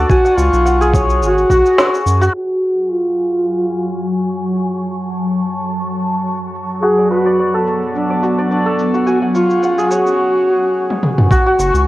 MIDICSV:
0, 0, Header, 1, 6, 480
1, 0, Start_track
1, 0, Key_signature, 3, "minor"
1, 0, Tempo, 560748
1, 83, Time_signature, 4, 2, 24, 8
1, 10164, End_track
2, 0, Start_track
2, 0, Title_t, "Santur"
2, 0, Program_c, 0, 15
2, 0, Note_on_c, 0, 66, 75
2, 0, Note_on_c, 0, 69, 96
2, 0, Note_on_c, 0, 71, 68
2, 0, Note_on_c, 0, 74, 83
2, 82, Note_on_c, 0, 80, 78
2, 134, Note_off_c, 0, 69, 0
2, 211, Note_on_c, 0, 78, 71
2, 320, Note_on_c, 0, 85, 71
2, 372, Note_off_c, 0, 74, 0
2, 557, Note_off_c, 0, 78, 0
2, 560, Note_on_c, 0, 78, 76
2, 693, Note_on_c, 0, 68, 96
2, 743, Note_off_c, 0, 71, 0
2, 802, Note_on_c, 0, 73, 77
2, 1277, Note_off_c, 0, 66, 0
2, 1281, Note_on_c, 0, 66, 99
2, 1760, Note_off_c, 0, 85, 0
2, 1794, Note_off_c, 0, 80, 0
2, 1890, Note_off_c, 0, 66, 0
2, 1893, Note_on_c, 0, 66, 99
2, 2395, Note_off_c, 0, 78, 0
2, 2984, Note_off_c, 0, 73, 0
2, 3288, Note_off_c, 0, 68, 0
2, 4674, Note_off_c, 0, 66, 0
2, 5843, Note_on_c, 0, 66, 85
2, 5973, Note_on_c, 0, 74, 61
2, 6084, Note_on_c, 0, 71, 63
2, 6209, Note_off_c, 0, 74, 0
2, 6212, Note_on_c, 0, 74, 92
2, 6320, Note_off_c, 0, 74, 0
2, 6323, Note_on_c, 0, 74, 69
2, 6455, Note_on_c, 0, 69, 86
2, 6931, Note_off_c, 0, 74, 0
2, 6934, Note_on_c, 0, 74, 70
2, 7040, Note_off_c, 0, 66, 0
2, 7043, Note_on_c, 0, 66, 69
2, 7172, Note_off_c, 0, 74, 0
2, 7176, Note_on_c, 0, 74, 94
2, 7279, Note_off_c, 0, 74, 0
2, 7282, Note_on_c, 0, 74, 68
2, 7409, Note_off_c, 0, 69, 0
2, 7412, Note_on_c, 0, 69, 85
2, 7649, Note_off_c, 0, 66, 0
2, 7652, Note_on_c, 0, 66, 67
2, 7761, Note_on_c, 0, 80, 71
2, 7812, Note_off_c, 0, 69, 0
2, 7893, Note_on_c, 0, 78, 65
2, 8003, Note_on_c, 0, 85, 66
2, 8054, Note_off_c, 0, 74, 0
2, 8239, Note_off_c, 0, 78, 0
2, 8243, Note_on_c, 0, 78, 71
2, 8372, Note_on_c, 0, 68, 89
2, 8423, Note_off_c, 0, 71, 0
2, 8480, Note_on_c, 0, 73, 68
2, 9442, Note_off_c, 0, 85, 0
2, 9473, Note_off_c, 0, 80, 0
2, 9679, Note_off_c, 0, 66, 0
2, 9683, Note_on_c, 0, 66, 95
2, 9810, Note_off_c, 0, 66, 0
2, 9813, Note_on_c, 0, 66, 73
2, 9924, Note_on_c, 0, 85, 75
2, 10077, Note_off_c, 0, 78, 0
2, 10164, Note_off_c, 0, 66, 0
2, 10164, Note_off_c, 0, 68, 0
2, 10164, Note_off_c, 0, 73, 0
2, 10164, Note_off_c, 0, 85, 0
2, 10164, End_track
3, 0, Start_track
3, 0, Title_t, "Ambient pad"
3, 0, Program_c, 1, 92
3, 1999, Note_on_c, 1, 85, 71
3, 2001, Note_on_c, 1, 54, 78
3, 2001, Note_on_c, 1, 80, 87
3, 3903, Note_off_c, 1, 80, 0
3, 3919, Note_on_c, 1, 81, 85
3, 5822, Note_off_c, 1, 81, 0
3, 5843, Note_on_c, 1, 59, 81
3, 7728, Note_off_c, 1, 54, 0
3, 7744, Note_off_c, 1, 59, 0
3, 8687, Note_off_c, 1, 85, 0
3, 9684, Note_on_c, 1, 61, 86
3, 9684, Note_on_c, 1, 69, 97
3, 9686, Note_on_c, 1, 66, 81
3, 10164, Note_off_c, 1, 61, 0
3, 10164, Note_off_c, 1, 66, 0
3, 10164, Note_off_c, 1, 69, 0
3, 10164, End_track
4, 0, Start_track
4, 0, Title_t, "Duduk"
4, 0, Program_c, 2, 69
4, 81, Note_on_c, 2, 66, 118
4, 323, Note_on_c, 2, 65, 107
4, 336, Note_off_c, 2, 66, 0
4, 803, Note_off_c, 2, 65, 0
4, 1037, Note_on_c, 2, 66, 116
4, 1726, Note_off_c, 2, 66, 0
4, 2001, Note_on_c, 2, 66, 97
4, 2482, Note_on_c, 2, 65, 93
4, 2495, Note_off_c, 2, 66, 0
4, 3683, Note_off_c, 2, 65, 0
4, 5840, Note_on_c, 2, 68, 103
4, 6065, Note_off_c, 2, 68, 0
4, 6080, Note_on_c, 2, 66, 102
4, 6528, Note_off_c, 2, 66, 0
4, 6805, Note_on_c, 2, 62, 86
4, 7250, Note_off_c, 2, 62, 0
4, 7284, Note_on_c, 2, 62, 86
4, 7628, Note_off_c, 2, 62, 0
4, 7761, Note_on_c, 2, 66, 92
4, 7870, Note_off_c, 2, 66, 0
4, 8000, Note_on_c, 2, 65, 109
4, 8483, Note_on_c, 2, 66, 97
4, 8495, Note_off_c, 2, 65, 0
4, 9443, Note_off_c, 2, 66, 0
4, 10164, End_track
5, 0, Start_track
5, 0, Title_t, "Analog synth bass"
5, 0, Program_c, 3, 38
5, 319, Note_on_c, 3, 37, 99
5, 425, Note_off_c, 3, 37, 0
5, 452, Note_on_c, 3, 35, 93
5, 1039, Note_on_c, 3, 32, 85
5, 1052, Note_off_c, 3, 35, 0
5, 1236, Note_off_c, 3, 32, 0
5, 1279, Note_on_c, 3, 35, 83
5, 1385, Note_off_c, 3, 35, 0
5, 1761, Note_on_c, 3, 42, 96
5, 1957, Note_off_c, 3, 42, 0
5, 9921, Note_on_c, 3, 30, 94
5, 10026, Note_off_c, 3, 30, 0
5, 10050, Note_on_c, 3, 37, 91
5, 10164, Note_off_c, 3, 37, 0
5, 10164, End_track
6, 0, Start_track
6, 0, Title_t, "Drums"
6, 81, Note_on_c, 9, 36, 104
6, 86, Note_on_c, 9, 82, 39
6, 167, Note_off_c, 9, 36, 0
6, 171, Note_off_c, 9, 82, 0
6, 217, Note_on_c, 9, 82, 32
6, 303, Note_off_c, 9, 82, 0
6, 327, Note_on_c, 9, 82, 69
6, 412, Note_off_c, 9, 82, 0
6, 457, Note_on_c, 9, 82, 32
6, 543, Note_off_c, 9, 82, 0
6, 568, Note_on_c, 9, 82, 40
6, 654, Note_off_c, 9, 82, 0
6, 700, Note_on_c, 9, 82, 31
6, 786, Note_off_c, 9, 82, 0
6, 801, Note_on_c, 9, 36, 96
6, 810, Note_on_c, 9, 82, 73
6, 887, Note_off_c, 9, 36, 0
6, 895, Note_off_c, 9, 82, 0
6, 939, Note_on_c, 9, 82, 31
6, 1025, Note_off_c, 9, 82, 0
6, 1048, Note_on_c, 9, 82, 41
6, 1134, Note_off_c, 9, 82, 0
6, 1179, Note_on_c, 9, 82, 31
6, 1265, Note_off_c, 9, 82, 0
6, 1281, Note_on_c, 9, 36, 56
6, 1287, Note_on_c, 9, 82, 72
6, 1367, Note_off_c, 9, 36, 0
6, 1372, Note_off_c, 9, 82, 0
6, 1418, Note_on_c, 9, 82, 33
6, 1504, Note_off_c, 9, 82, 0
6, 1525, Note_on_c, 9, 38, 79
6, 1528, Note_on_c, 9, 82, 44
6, 1610, Note_off_c, 9, 38, 0
6, 1613, Note_off_c, 9, 82, 0
6, 1660, Note_on_c, 9, 82, 28
6, 1745, Note_off_c, 9, 82, 0
6, 1769, Note_on_c, 9, 82, 73
6, 1854, Note_off_c, 9, 82, 0
6, 1899, Note_on_c, 9, 82, 31
6, 1984, Note_off_c, 9, 82, 0
6, 2727, Note_on_c, 9, 82, 66
6, 2812, Note_off_c, 9, 82, 0
6, 3208, Note_on_c, 9, 82, 64
6, 3293, Note_off_c, 9, 82, 0
6, 3448, Note_on_c, 9, 82, 38
6, 3533, Note_off_c, 9, 82, 0
6, 3688, Note_on_c, 9, 82, 67
6, 3773, Note_off_c, 9, 82, 0
6, 3819, Note_on_c, 9, 82, 30
6, 3904, Note_off_c, 9, 82, 0
6, 3929, Note_on_c, 9, 82, 39
6, 4015, Note_off_c, 9, 82, 0
6, 4169, Note_on_c, 9, 82, 70
6, 4254, Note_off_c, 9, 82, 0
6, 4299, Note_on_c, 9, 82, 29
6, 4385, Note_off_c, 9, 82, 0
6, 4408, Note_on_c, 9, 82, 39
6, 4493, Note_off_c, 9, 82, 0
6, 4647, Note_on_c, 9, 82, 69
6, 4732, Note_off_c, 9, 82, 0
6, 4779, Note_on_c, 9, 82, 29
6, 4865, Note_off_c, 9, 82, 0
6, 4887, Note_on_c, 9, 82, 40
6, 4973, Note_off_c, 9, 82, 0
6, 5127, Note_on_c, 9, 82, 67
6, 5212, Note_off_c, 9, 82, 0
6, 5257, Note_on_c, 9, 82, 30
6, 5343, Note_off_c, 9, 82, 0
6, 5366, Note_on_c, 9, 82, 42
6, 5451, Note_off_c, 9, 82, 0
6, 5606, Note_on_c, 9, 82, 68
6, 5691, Note_off_c, 9, 82, 0
6, 5737, Note_on_c, 9, 82, 31
6, 5823, Note_off_c, 9, 82, 0
6, 5846, Note_on_c, 9, 82, 40
6, 5931, Note_off_c, 9, 82, 0
6, 6084, Note_on_c, 9, 82, 70
6, 6170, Note_off_c, 9, 82, 0
6, 6216, Note_on_c, 9, 82, 29
6, 6301, Note_off_c, 9, 82, 0
6, 6325, Note_on_c, 9, 82, 42
6, 6411, Note_off_c, 9, 82, 0
6, 6565, Note_on_c, 9, 82, 76
6, 6650, Note_off_c, 9, 82, 0
6, 6696, Note_on_c, 9, 82, 31
6, 6782, Note_off_c, 9, 82, 0
6, 6805, Note_on_c, 9, 82, 40
6, 6891, Note_off_c, 9, 82, 0
6, 7044, Note_on_c, 9, 82, 71
6, 7130, Note_off_c, 9, 82, 0
6, 7176, Note_on_c, 9, 82, 31
6, 7261, Note_off_c, 9, 82, 0
6, 7285, Note_on_c, 9, 82, 41
6, 7370, Note_off_c, 9, 82, 0
6, 7524, Note_on_c, 9, 82, 76
6, 7609, Note_off_c, 9, 82, 0
6, 7654, Note_on_c, 9, 82, 31
6, 7739, Note_off_c, 9, 82, 0
6, 7763, Note_on_c, 9, 82, 41
6, 7849, Note_off_c, 9, 82, 0
6, 8004, Note_on_c, 9, 82, 70
6, 8090, Note_off_c, 9, 82, 0
6, 8134, Note_on_c, 9, 82, 30
6, 8220, Note_off_c, 9, 82, 0
6, 8245, Note_on_c, 9, 82, 40
6, 8331, Note_off_c, 9, 82, 0
6, 8375, Note_on_c, 9, 82, 32
6, 8460, Note_off_c, 9, 82, 0
6, 8484, Note_on_c, 9, 82, 67
6, 8570, Note_off_c, 9, 82, 0
6, 8616, Note_on_c, 9, 82, 31
6, 8702, Note_off_c, 9, 82, 0
6, 9336, Note_on_c, 9, 48, 44
6, 9421, Note_off_c, 9, 48, 0
6, 9444, Note_on_c, 9, 47, 68
6, 9530, Note_off_c, 9, 47, 0
6, 9575, Note_on_c, 9, 45, 74
6, 9660, Note_off_c, 9, 45, 0
6, 9682, Note_on_c, 9, 36, 110
6, 9688, Note_on_c, 9, 82, 44
6, 9767, Note_off_c, 9, 36, 0
6, 9774, Note_off_c, 9, 82, 0
6, 9927, Note_on_c, 9, 82, 76
6, 10013, Note_off_c, 9, 82, 0
6, 10058, Note_on_c, 9, 82, 32
6, 10144, Note_off_c, 9, 82, 0
6, 10164, End_track
0, 0, End_of_file